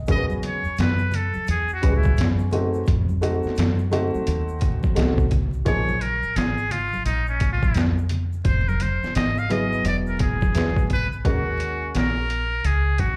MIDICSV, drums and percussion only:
0, 0, Header, 1, 2, 480
1, 0, Start_track
1, 0, Key_signature, -6, "minor"
1, 0, Tempo, 697674
1, 58, Time_signature, 4, 2, 24, 8
1, 9058, End_track
2, 0, Start_track
2, 0, Title_t, "Drums"
2, 46, Note_on_c, 9, 82, 58
2, 56, Note_on_c, 9, 42, 76
2, 58, Note_on_c, 9, 36, 113
2, 114, Note_off_c, 9, 82, 0
2, 125, Note_off_c, 9, 42, 0
2, 126, Note_off_c, 9, 36, 0
2, 205, Note_on_c, 9, 63, 59
2, 205, Note_on_c, 9, 82, 41
2, 274, Note_off_c, 9, 63, 0
2, 274, Note_off_c, 9, 82, 0
2, 294, Note_on_c, 9, 64, 54
2, 294, Note_on_c, 9, 82, 38
2, 296, Note_on_c, 9, 42, 76
2, 362, Note_off_c, 9, 64, 0
2, 362, Note_off_c, 9, 82, 0
2, 365, Note_off_c, 9, 42, 0
2, 442, Note_on_c, 9, 82, 48
2, 511, Note_off_c, 9, 82, 0
2, 529, Note_on_c, 9, 82, 59
2, 540, Note_on_c, 9, 42, 93
2, 551, Note_on_c, 9, 38, 113
2, 598, Note_off_c, 9, 82, 0
2, 609, Note_off_c, 9, 42, 0
2, 620, Note_off_c, 9, 38, 0
2, 679, Note_on_c, 9, 82, 40
2, 747, Note_off_c, 9, 82, 0
2, 767, Note_on_c, 9, 64, 60
2, 767, Note_on_c, 9, 82, 41
2, 783, Note_on_c, 9, 42, 76
2, 836, Note_off_c, 9, 64, 0
2, 836, Note_off_c, 9, 82, 0
2, 851, Note_off_c, 9, 42, 0
2, 919, Note_on_c, 9, 63, 41
2, 919, Note_on_c, 9, 82, 47
2, 988, Note_off_c, 9, 63, 0
2, 988, Note_off_c, 9, 82, 0
2, 1010, Note_on_c, 9, 82, 73
2, 1019, Note_on_c, 9, 42, 92
2, 1078, Note_off_c, 9, 82, 0
2, 1088, Note_off_c, 9, 42, 0
2, 1158, Note_on_c, 9, 82, 43
2, 1227, Note_off_c, 9, 82, 0
2, 1253, Note_on_c, 9, 82, 34
2, 1258, Note_on_c, 9, 42, 81
2, 1262, Note_on_c, 9, 36, 84
2, 1322, Note_off_c, 9, 82, 0
2, 1327, Note_off_c, 9, 42, 0
2, 1331, Note_off_c, 9, 36, 0
2, 1399, Note_on_c, 9, 63, 66
2, 1399, Note_on_c, 9, 82, 49
2, 1412, Note_on_c, 9, 36, 90
2, 1468, Note_off_c, 9, 63, 0
2, 1468, Note_off_c, 9, 82, 0
2, 1481, Note_off_c, 9, 36, 0
2, 1488, Note_on_c, 9, 82, 69
2, 1500, Note_on_c, 9, 42, 89
2, 1520, Note_on_c, 9, 38, 111
2, 1557, Note_off_c, 9, 82, 0
2, 1569, Note_off_c, 9, 42, 0
2, 1589, Note_off_c, 9, 38, 0
2, 1643, Note_on_c, 9, 82, 47
2, 1712, Note_off_c, 9, 82, 0
2, 1729, Note_on_c, 9, 64, 57
2, 1729, Note_on_c, 9, 82, 39
2, 1739, Note_on_c, 9, 42, 72
2, 1798, Note_off_c, 9, 64, 0
2, 1798, Note_off_c, 9, 82, 0
2, 1808, Note_off_c, 9, 42, 0
2, 1884, Note_on_c, 9, 82, 49
2, 1953, Note_off_c, 9, 82, 0
2, 1968, Note_on_c, 9, 82, 60
2, 1980, Note_on_c, 9, 36, 116
2, 1982, Note_on_c, 9, 42, 79
2, 2037, Note_off_c, 9, 82, 0
2, 2049, Note_off_c, 9, 36, 0
2, 2051, Note_off_c, 9, 42, 0
2, 2125, Note_on_c, 9, 63, 57
2, 2125, Note_on_c, 9, 82, 40
2, 2194, Note_off_c, 9, 63, 0
2, 2194, Note_off_c, 9, 82, 0
2, 2215, Note_on_c, 9, 64, 57
2, 2215, Note_on_c, 9, 82, 42
2, 2222, Note_on_c, 9, 42, 73
2, 2284, Note_off_c, 9, 64, 0
2, 2284, Note_off_c, 9, 82, 0
2, 2291, Note_off_c, 9, 42, 0
2, 2358, Note_on_c, 9, 82, 44
2, 2387, Note_on_c, 9, 38, 35
2, 2426, Note_off_c, 9, 82, 0
2, 2447, Note_on_c, 9, 82, 59
2, 2456, Note_off_c, 9, 38, 0
2, 2461, Note_on_c, 9, 42, 106
2, 2472, Note_on_c, 9, 38, 123
2, 2516, Note_off_c, 9, 82, 0
2, 2530, Note_off_c, 9, 42, 0
2, 2541, Note_off_c, 9, 38, 0
2, 2605, Note_on_c, 9, 82, 40
2, 2673, Note_off_c, 9, 82, 0
2, 2693, Note_on_c, 9, 64, 58
2, 2693, Note_on_c, 9, 82, 43
2, 2702, Note_on_c, 9, 42, 75
2, 2762, Note_off_c, 9, 64, 0
2, 2762, Note_off_c, 9, 82, 0
2, 2770, Note_off_c, 9, 42, 0
2, 2851, Note_on_c, 9, 63, 43
2, 2851, Note_on_c, 9, 82, 46
2, 2920, Note_off_c, 9, 63, 0
2, 2920, Note_off_c, 9, 82, 0
2, 2935, Note_on_c, 9, 82, 72
2, 2937, Note_on_c, 9, 42, 87
2, 3004, Note_off_c, 9, 82, 0
2, 3006, Note_off_c, 9, 42, 0
2, 3085, Note_on_c, 9, 82, 48
2, 3153, Note_off_c, 9, 82, 0
2, 3172, Note_on_c, 9, 42, 78
2, 3179, Note_on_c, 9, 36, 91
2, 3181, Note_on_c, 9, 82, 39
2, 3241, Note_off_c, 9, 42, 0
2, 3247, Note_off_c, 9, 36, 0
2, 3250, Note_off_c, 9, 82, 0
2, 3322, Note_on_c, 9, 63, 65
2, 3322, Note_on_c, 9, 82, 44
2, 3329, Note_on_c, 9, 36, 86
2, 3391, Note_off_c, 9, 63, 0
2, 3391, Note_off_c, 9, 82, 0
2, 3398, Note_off_c, 9, 36, 0
2, 3415, Note_on_c, 9, 42, 96
2, 3415, Note_on_c, 9, 82, 65
2, 3434, Note_on_c, 9, 38, 103
2, 3483, Note_off_c, 9, 82, 0
2, 3484, Note_off_c, 9, 42, 0
2, 3503, Note_off_c, 9, 38, 0
2, 3564, Note_on_c, 9, 36, 106
2, 3567, Note_on_c, 9, 82, 43
2, 3633, Note_off_c, 9, 36, 0
2, 3636, Note_off_c, 9, 82, 0
2, 3652, Note_on_c, 9, 42, 73
2, 3653, Note_on_c, 9, 64, 63
2, 3653, Note_on_c, 9, 82, 45
2, 3658, Note_on_c, 9, 36, 91
2, 3721, Note_off_c, 9, 42, 0
2, 3722, Note_off_c, 9, 64, 0
2, 3722, Note_off_c, 9, 82, 0
2, 3727, Note_off_c, 9, 36, 0
2, 3805, Note_on_c, 9, 82, 47
2, 3874, Note_off_c, 9, 82, 0
2, 3893, Note_on_c, 9, 42, 77
2, 3895, Note_on_c, 9, 36, 108
2, 3895, Note_on_c, 9, 82, 63
2, 3962, Note_off_c, 9, 42, 0
2, 3963, Note_off_c, 9, 82, 0
2, 3964, Note_off_c, 9, 36, 0
2, 4049, Note_on_c, 9, 63, 57
2, 4049, Note_on_c, 9, 82, 43
2, 4118, Note_off_c, 9, 63, 0
2, 4118, Note_off_c, 9, 82, 0
2, 4136, Note_on_c, 9, 42, 72
2, 4140, Note_on_c, 9, 64, 51
2, 4140, Note_on_c, 9, 82, 38
2, 4205, Note_off_c, 9, 42, 0
2, 4209, Note_off_c, 9, 64, 0
2, 4209, Note_off_c, 9, 82, 0
2, 4285, Note_on_c, 9, 82, 49
2, 4354, Note_off_c, 9, 82, 0
2, 4376, Note_on_c, 9, 82, 67
2, 4378, Note_on_c, 9, 42, 99
2, 4389, Note_on_c, 9, 38, 113
2, 4445, Note_off_c, 9, 82, 0
2, 4447, Note_off_c, 9, 42, 0
2, 4458, Note_off_c, 9, 38, 0
2, 4525, Note_on_c, 9, 82, 45
2, 4594, Note_off_c, 9, 82, 0
2, 4616, Note_on_c, 9, 64, 62
2, 4616, Note_on_c, 9, 82, 41
2, 4618, Note_on_c, 9, 42, 73
2, 4685, Note_off_c, 9, 64, 0
2, 4685, Note_off_c, 9, 82, 0
2, 4687, Note_off_c, 9, 42, 0
2, 4769, Note_on_c, 9, 63, 44
2, 4769, Note_on_c, 9, 82, 46
2, 4837, Note_off_c, 9, 63, 0
2, 4837, Note_off_c, 9, 82, 0
2, 4854, Note_on_c, 9, 42, 95
2, 4858, Note_on_c, 9, 82, 73
2, 4923, Note_off_c, 9, 42, 0
2, 4927, Note_off_c, 9, 82, 0
2, 5003, Note_on_c, 9, 82, 45
2, 5072, Note_off_c, 9, 82, 0
2, 5092, Note_on_c, 9, 42, 79
2, 5097, Note_on_c, 9, 36, 91
2, 5099, Note_on_c, 9, 82, 36
2, 5160, Note_off_c, 9, 42, 0
2, 5166, Note_off_c, 9, 36, 0
2, 5168, Note_off_c, 9, 82, 0
2, 5247, Note_on_c, 9, 36, 89
2, 5248, Note_on_c, 9, 63, 72
2, 5248, Note_on_c, 9, 82, 45
2, 5316, Note_off_c, 9, 36, 0
2, 5316, Note_off_c, 9, 63, 0
2, 5316, Note_off_c, 9, 82, 0
2, 5328, Note_on_c, 9, 42, 95
2, 5338, Note_on_c, 9, 82, 71
2, 5348, Note_on_c, 9, 38, 108
2, 5397, Note_off_c, 9, 42, 0
2, 5407, Note_off_c, 9, 82, 0
2, 5416, Note_off_c, 9, 38, 0
2, 5493, Note_on_c, 9, 82, 49
2, 5561, Note_off_c, 9, 82, 0
2, 5569, Note_on_c, 9, 42, 72
2, 5579, Note_on_c, 9, 64, 59
2, 5579, Note_on_c, 9, 82, 43
2, 5638, Note_off_c, 9, 42, 0
2, 5648, Note_off_c, 9, 64, 0
2, 5648, Note_off_c, 9, 82, 0
2, 5729, Note_on_c, 9, 82, 46
2, 5798, Note_off_c, 9, 82, 0
2, 5812, Note_on_c, 9, 42, 76
2, 5814, Note_on_c, 9, 36, 110
2, 5816, Note_on_c, 9, 82, 59
2, 5881, Note_off_c, 9, 42, 0
2, 5883, Note_off_c, 9, 36, 0
2, 5885, Note_off_c, 9, 82, 0
2, 5977, Note_on_c, 9, 63, 60
2, 5977, Note_on_c, 9, 82, 43
2, 6046, Note_off_c, 9, 63, 0
2, 6046, Note_off_c, 9, 82, 0
2, 6053, Note_on_c, 9, 42, 74
2, 6066, Note_on_c, 9, 64, 59
2, 6066, Note_on_c, 9, 82, 41
2, 6122, Note_off_c, 9, 42, 0
2, 6135, Note_off_c, 9, 64, 0
2, 6135, Note_off_c, 9, 82, 0
2, 6215, Note_on_c, 9, 82, 48
2, 6220, Note_on_c, 9, 38, 36
2, 6284, Note_off_c, 9, 82, 0
2, 6289, Note_off_c, 9, 38, 0
2, 6296, Note_on_c, 9, 42, 97
2, 6299, Note_on_c, 9, 82, 62
2, 6307, Note_on_c, 9, 38, 120
2, 6365, Note_off_c, 9, 42, 0
2, 6368, Note_off_c, 9, 82, 0
2, 6376, Note_off_c, 9, 38, 0
2, 6450, Note_on_c, 9, 82, 43
2, 6519, Note_off_c, 9, 82, 0
2, 6536, Note_on_c, 9, 64, 63
2, 6536, Note_on_c, 9, 82, 40
2, 6539, Note_on_c, 9, 42, 77
2, 6605, Note_off_c, 9, 64, 0
2, 6605, Note_off_c, 9, 82, 0
2, 6608, Note_off_c, 9, 42, 0
2, 6692, Note_on_c, 9, 63, 45
2, 6692, Note_on_c, 9, 82, 43
2, 6760, Note_off_c, 9, 63, 0
2, 6760, Note_off_c, 9, 82, 0
2, 6776, Note_on_c, 9, 42, 91
2, 6777, Note_on_c, 9, 82, 75
2, 6845, Note_off_c, 9, 42, 0
2, 6846, Note_off_c, 9, 82, 0
2, 6926, Note_on_c, 9, 82, 42
2, 6995, Note_off_c, 9, 82, 0
2, 7013, Note_on_c, 9, 42, 86
2, 7020, Note_on_c, 9, 36, 100
2, 7023, Note_on_c, 9, 82, 39
2, 7082, Note_off_c, 9, 42, 0
2, 7089, Note_off_c, 9, 36, 0
2, 7092, Note_off_c, 9, 82, 0
2, 7171, Note_on_c, 9, 36, 91
2, 7171, Note_on_c, 9, 63, 68
2, 7171, Note_on_c, 9, 82, 47
2, 7240, Note_off_c, 9, 36, 0
2, 7240, Note_off_c, 9, 63, 0
2, 7240, Note_off_c, 9, 82, 0
2, 7256, Note_on_c, 9, 42, 94
2, 7257, Note_on_c, 9, 82, 70
2, 7276, Note_on_c, 9, 38, 113
2, 7325, Note_off_c, 9, 42, 0
2, 7326, Note_off_c, 9, 82, 0
2, 7344, Note_off_c, 9, 38, 0
2, 7406, Note_on_c, 9, 36, 99
2, 7416, Note_on_c, 9, 82, 50
2, 7475, Note_off_c, 9, 36, 0
2, 7484, Note_off_c, 9, 82, 0
2, 7498, Note_on_c, 9, 42, 73
2, 7501, Note_on_c, 9, 36, 93
2, 7502, Note_on_c, 9, 64, 60
2, 7502, Note_on_c, 9, 82, 42
2, 7567, Note_off_c, 9, 42, 0
2, 7570, Note_off_c, 9, 36, 0
2, 7571, Note_off_c, 9, 64, 0
2, 7571, Note_off_c, 9, 82, 0
2, 7653, Note_on_c, 9, 82, 46
2, 7721, Note_off_c, 9, 82, 0
2, 7739, Note_on_c, 9, 36, 110
2, 7741, Note_on_c, 9, 42, 81
2, 7808, Note_off_c, 9, 36, 0
2, 7809, Note_off_c, 9, 42, 0
2, 7981, Note_on_c, 9, 42, 66
2, 8050, Note_off_c, 9, 42, 0
2, 8220, Note_on_c, 9, 42, 94
2, 8231, Note_on_c, 9, 38, 121
2, 8288, Note_off_c, 9, 42, 0
2, 8300, Note_off_c, 9, 38, 0
2, 8462, Note_on_c, 9, 42, 70
2, 8531, Note_off_c, 9, 42, 0
2, 8699, Note_on_c, 9, 42, 82
2, 8768, Note_off_c, 9, 42, 0
2, 8932, Note_on_c, 9, 42, 75
2, 8939, Note_on_c, 9, 36, 82
2, 9001, Note_off_c, 9, 42, 0
2, 9008, Note_off_c, 9, 36, 0
2, 9058, End_track
0, 0, End_of_file